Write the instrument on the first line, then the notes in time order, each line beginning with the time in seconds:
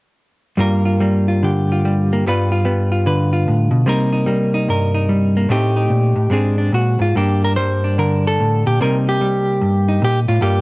hollow-body jazz guitar
0.57 G2 G3 A#3 F4 A#4
0.85 F4
1.00 G3 A#3
1.28 F4
1.43 D3 G4
1.72 F4
1.85 G3
2.13 A#3
2.26 G2 G3 B3 F4 B4
2.52 F4
2.65 G3 B3
2.92 F4
3.06 D3 B4
3.33 F4
3.48 A2
3.71 B2
3.86 C3 G3 A#3 D#4 A#4
4.13 D#4
4.27 G3 A#3
4.54 D#4
4.69 G2 A#4
4.95 D#4
5.09 G3
5.37 A#3
5.49 A2 A3 C4 D#4 G4
5.76 D#4
5.90 A#2
6.16 A2
6.30 G#2 G#3 C4 D4 G#4
6.58 D4
6.72 A#2 F#4
6.99 G#2 F4
7.15 G2 G3 A#3 D4 G4
7.44 A#4
7.56 G3 C5
7.84 D4
7.98 D3 A#4
8.27 A4
8.40 A2
8.66 A#2 G4
8.80 C3 G3 A#3 D#4 A#4
9.09 G4
9.21 G3
9.61 G2
9.89 D#4
10.02 A#2 G4
10.28 A2 F4
10.41 G2 G3 A#3 F4 G4